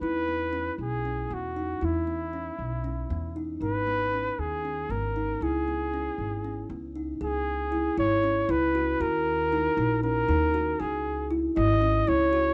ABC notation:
X:1
M:7/8
L:1/8
Q:1/4=117
K:C#dor
V:1 name="Flugelhorn"
B3 G2 F2 | E6 z | B3 G2 A2 | G4- G z2 |
G3 c2 B2 | A4 A3 | G2 z d2 c2 |]
V:2 name="Kalimba"
E B, C2 C B, D | E B, C2 C B, D | D B, C2 C B, D | E B, C2 C B, D |
G2 E E C E F | F2 D D C D F | G2 E E C E F |]
V:3 name="Upright bass" clef=bass
E,,3 B,,,2 E,,2 | E,,3 B,,,2 E,,2 | G,,,3 D,,2 G,,,2 | C,,3 G,,,2 C,,2 |
C,,3 G,,,2 C,,2 | D,,3 A,,,2 D,,2 | C,,3 G,,,2 C,,2 |]